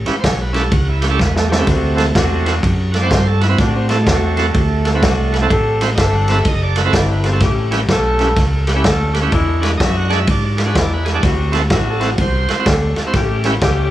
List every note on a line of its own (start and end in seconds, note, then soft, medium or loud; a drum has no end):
0.06 0.15 C#4 medium
0.06 0.15 E4 medium
0.06 0.16 G4 medium
0.06 0.16 B4 medium
0.06 muted fingered electric bass stroke soft
0.06 snare soft
0.06 ride medium
0.20 0.24 C5 medium
0.20 0.40 C#5 loud
0.20 kick medium
0.20 ride medium
0.24 0.71 B1 medium
0.24 snare loud
0.42 0.53 B4 medium
0.53 0.62 C#4 medium
0.53 0.63 E4 medium
0.53 0.64 G4 medium
0.53 0.72 A4 medium
0.53 0.63 B4 medium
0.53 snare soft
0.53 ride medium
0.72 1.19 C#2 medium
0.72 0.88 F#4 medium
0.72 kick medium
0.72 ride medium
0.89 1.04 E4 medium
1.01 1.08 C#4 medium
1.01 1.06 G4 medium
1.01 1.07 B4 medium
1.01 snare soft
1.01 ride medium
1.10 1.19 C#4 medium
1.10 1.19 E4 medium
1.10 1.20 G4 medium
1.10 1.20 A4 medium
1.19 1.66 E2 medium
1.19 1.36 B3 loud
1.19 kick medium
1.19 snare medium
1.36 1.51 A3 medium
1.36 snare medium
1.49 2.44 C3 medium
1.49 2.45 A3 loud
1.49 1.54 G4 medium
1.49 1.55 C#5 medium
1.49 snare medium
1.58 1.67 C#4 medium
1.58 1.68 E4 medium
1.58 1.68 G4 medium
1.58 1.68 B4 medium
1.67 2.14 D2 medium
1.67 2.02 C4 medium
1.67 2.02 D4 medium
1.67 2.02 F#4 medium
1.67 kick medium
1.67 snare soft
1.67 ride medium
1.95 2.05 C4 medium
1.95 2.06 E4 medium
1.95 2.06 F#4 medium
1.95 2.06 A4 medium
1.95 snare soft
1.95 ride medium
2.15 2.62 E2 medium
2.15 2.75 C4 medium
2.15 2.76 D4 medium
2.15 2.76 F#4 loud
2.15 kick medium
2.15 snare loud
2.15 ride medium
2.44 2.54 C4 medium
2.44 2.54 E4 medium
2.44 2.55 F#4 medium
2.44 2.55 A4 medium
2.44 snare soft
2.44 ride medium
2.63 3.10 F#2 medium
2.63 kick medium
2.63 ride medium
2.92 2.97 F#4 medium
2.92 2.98 A4 medium
2.92 snare soft
2.92 ride medium
2.96 3.11 D5 loud
3.02 3.11 C4 medium
3.02 3.11 E4 medium
3.02 3.12 F#4 medium
3.02 3.11 C5 medium
3.11 3.58 G2 loud
3.11 3.45 C4 medium
3.11 3.45 D4 medium
3.11 3.46 F#4 medium
3.11 3.27 C5 medium
3.11 kick medium
3.11 snare loud
3.11 ride medium
3.27 3.43 A4 medium
3.41 3.48 E4 medium
3.41 3.46 F#4 medium
3.41 3.47 B4 medium
3.41 snare soft
3.41 ride medium
3.48 3.58 C4 medium
3.48 3.58 E4 medium
3.48 3.59 F#4 medium
3.48 3.59 B4 medium
3.58 4.05 A2 medium
3.58 3.93 C4 medium
3.58 3.93 D4 medium
3.58 3.75 D4 medium
3.58 3.93 F#4 medium
3.58 kick medium
3.58 snare soft
3.58 ride medium
3.76 3.88 C4 loud
3.89 4.07 A3 medium
3.89 3.98 C4 medium
3.89 3.98 E4 medium
3.89 3.99 F#4 medium
3.89 3.99 A4 medium
3.89 snare soft
3.89 ride medium
4.04 4.53 E2 medium
4.04 4.07 G#3 medium
4.04 4.67 C4 medium
4.04 4.67 D4 medium
4.04 4.67 F#4 medium
4.04 kick medium
4.04 snare loud
4.04 ride medium
4.08 5.47 A3 loud
4.37 4.46 C4 medium
4.37 4.46 E4 medium
4.37 4.47 F#4 medium
4.37 4.47 A4 medium
4.37 snare soft
4.37 ride medium
4.54 5.01 D2 medium
4.54 kick medium
4.54 ride medium
4.85 4.89 F#4 medium
4.85 4.90 A4 loud
4.85 snare soft
4.85 ride medium
4.94 5.03 C4 medium
4.94 5.03 E4 medium
4.94 5.03 F#4 medium
4.94 5.04 B4 medium
5.02 5.49 C2 loud
5.02 5.36 C4 medium
5.02 5.37 D4 medium
5.02 5.37 F#4 medium
5.02 kick medium
5.02 snare loud
5.02 ride medium
5.33 5.37 F#4 medium
5.33 5.38 B4 medium
5.33 snare soft
5.33 ride medium
5.42 5.51 C4 medium
5.42 5.51 E4 medium
5.42 5.51 F#4 medium
5.42 5.51 A4 medium
5.50 5.97 A1 medium
5.50 5.84 C4 medium
5.50 5.84 D4 medium
5.50 5.84 A4 loud
5.50 kick medium
5.50 ride medium
5.81 5.90 C4 medium
5.81 5.90 E4 medium
5.81 5.90 F#4 medium
5.81 5.90 C5 medium
5.81 snare soft
5.81 ride medium
5.95 6.45 G1 loud
5.95 6.58 C4 medium
5.95 6.58 D4 medium
5.95 6.58 A4 medium
5.95 5.99 D#5 medium
5.95 6.14 E5 loud
5.95 kick medium
5.95 snare loud
5.95 ride medium
6.15 6.30 F#5 loud
6.28 6.38 C4 medium
6.28 6.38 E4 medium
6.28 6.38 F#4 medium
6.28 6.39 A4 medium
6.28 6.46 E5 medium
6.28 snare soft
6.28 ride medium
6.45 6.92 F#1 medium
6.45 6.62 D#5 medium
6.45 kick medium
6.45 ride medium
6.63 6.78 D5 medium
6.76 6.81 F#4 medium
6.76 6.82 A4 medium
6.76 snare soft
6.76 ride medium
6.80 6.95 B4 loud
6.85 6.94 C4 medium
6.85 6.94 E4 medium
6.85 6.94 F#4 medium
6.85 6.95 A4 medium
6.93 7.40 G1 medium
6.93 7.27 C4 medium
6.93 7.28 D4 medium
6.93 7.28 E4 medium
6.93 7.10 D5 medium
6.93 kick medium
6.93 snare loud
6.93 ride medium
7.11 7.26 B4 medium
7.24 7.31 C4 medium
7.24 7.28 F#4 medium
7.24 7.29 A4 medium
7.24 snare soft
7.24 ride medium
7.32 7.41 C4 medium
7.32 7.42 E4 medium
7.32 7.42 F#4 medium
7.32 7.42 A4 medium
7.40 7.88 A1 medium
7.40 7.75 A3 medium
7.40 7.75 C#4 medium
7.40 7.76 G4 medium
7.40 kick medium
7.40 snare soft
7.40 ride medium
7.71 7.80 C#4 medium
7.71 7.80 E4 medium
7.71 7.81 G4 medium
7.71 7.81 B4 medium
7.71 snare soft
7.71 ride medium
7.89 8.36 B1 medium
7.89 8.49 A3 loud
7.89 8.50 C#4 medium
7.89 8.50 A4 loud
7.89 kick medium
7.89 snare loud
7.89 ride medium
8.19 8.28 C#4 medium
8.19 8.29 E4 medium
8.19 8.29 G4 medium
8.19 8.29 B4 medium
8.19 snare soft
8.19 ride medium
8.36 8.83 C#2 medium
8.36 kick medium
8.36 snare soft
8.36 ride medium
8.67 8.72 G4 medium
8.67 8.73 B4 loud
8.67 snare soft
8.67 ride medium
8.75 8.84 C#4 medium
8.75 8.85 E4 medium
8.75 8.85 G4 medium
8.75 8.85 B4 medium
8.84 9.31 D2 loud
8.84 9.19 A3 medium
8.84 9.19 C#4 medium
8.84 9.19 A4 medium
8.84 kick medium
8.84 snare loud
8.84 ride medium
9.13 9.19 G4 medium
9.13 9.20 B4 medium
9.13 snare soft
9.13 ride medium
9.22 9.32 C#4 medium
9.22 9.32 E4 medium
9.22 9.32 G4 medium
9.22 9.32 B4 medium
9.32 9.79 E2 medium
9.32 9.67 G#3 medium
9.32 9.67 D4 medium
9.32 9.67 E4 loud
9.32 kick medium
9.32 ride medium
9.61 9.71 D4 medium
9.61 9.71 F#4 medium
9.61 9.71 G#4 medium
9.61 9.72 B4 medium
9.61 snare soft
9.61 ride medium
9.77 10.27 F#2 medium
9.77 10.41 G#3 medium
9.77 10.41 D4 medium
9.77 10.41 F#4 medium
9.77 9.81 D#5 medium
9.77 kick medium
9.77 snare loud
9.77 ride medium
9.82 9.97 E5 loud
9.97 10.12 F#5 medium
10.10 10.19 D4 medium
10.10 10.19 F#4 medium
10.10 10.20 G#4 medium
10.10 10.20 D5 medium
10.10 10.28 E5 loud
10.10 snare soft
10.10 ride medium
10.27 10.75 G#2 medium
10.27 10.44 D5 medium
10.27 kick medium
10.27 ride medium
10.45 10.60 D5 medium
10.57 10.62 G#4 medium
10.57 10.61 B4 medium
10.57 snare soft
10.57 ride medium
10.63 10.75 D4 medium
10.63 10.76 F#4 medium
10.63 10.66 B4 loud
10.67 10.76 G#4 medium
10.67 10.76 B4 medium
10.75 11.22 E2 medium
10.75 11.10 G#3 medium
10.75 11.10 D4 medium
10.75 11.10 E4 medium
10.75 10.93 D5 medium
10.75 kick medium
10.75 snare loud
10.75 ride medium
10.94 11.05 B4 medium
11.05 11.10 G#4 medium
11.05 11.11 B4 medium
11.05 snare soft
11.05 ride medium
11.09 11.34 E4 loud
11.14 11.23 D4 medium
11.14 11.24 F#4 medium
11.14 11.24 G#4 medium
11.14 11.24 D5 medium
11.23 11.70 D2 medium
11.23 11.58 C4 medium
11.23 11.58 D4 medium
11.23 11.58 F#4 medium
11.23 kick medium
11.23 snare soft
11.23 ride medium
11.52 11.62 C4 medium
11.52 11.62 E4 medium
11.52 11.62 F#4 medium
11.52 11.63 A4 medium
11.52 snare soft
11.52 ride medium
11.70 12.18 A1 loud
11.70 12.32 C4 medium
11.70 12.32 D4 medium
11.70 11.88 E4 loud
11.70 12.32 F#4 medium
11.70 kick medium
11.70 snare loud
11.70 ride medium
11.90 12.00 A4 medium
12.00 12.10 C4 medium
12.00 12.10 E4 medium
12.00 12.10 F#4 medium
12.00 12.11 A4 medium
12.00 snare soft
12.00 ride medium
12.18 12.48 C2 medium
12.18 12.51 C5 loud
12.18 kick medium
12.18 ride medium
12.48 12.54 F#4 medium
12.48 12.55 A4 medium
12.48 muted fingered electric bass stroke soft
12.48 snare soft
12.48 ride medium
12.53 12.59 C5 loud
12.58 12.67 C4 medium
12.58 12.68 E4 medium
12.58 12.68 F#4 medium
12.58 12.68 C5 medium
12.66 12.95 D2 medium
12.66 13.01 C4 medium
12.66 13.01 D4 medium
12.66 13.01 A4 medium
12.66 kick medium
12.66 snare loud
12.66 ride medium
12.96 13.02 F#4 medium
12.96 13.03 A4 medium
12.96 muted fingered electric bass stroke soft
12.96 snare soft
12.96 ride medium
13.06 13.15 C4 medium
13.06 13.15 E4 medium
13.06 13.16 F#4 medium
13.06 13.16 C5 medium
13.13 13.61 A1 medium
13.13 13.49 A3 medium
13.13 13.49 C#4 medium
13.13 13.49 G4 loud
13.13 kick medium
13.13 snare soft
13.13 ride medium
13.44 13.54 C#4 medium
13.44 13.54 E4 medium
13.44 13.55 G4 medium
13.44 13.55 B4 loud
13.44 snare soft
13.44 ride medium
13.61 13.91 C#2 loud
13.61 13.91 A3 medium
13.61 13.91 C#4 medium
13.61 13.91 G4 loud
13.61 kick medium
13.61 snare loud
13.61 ride medium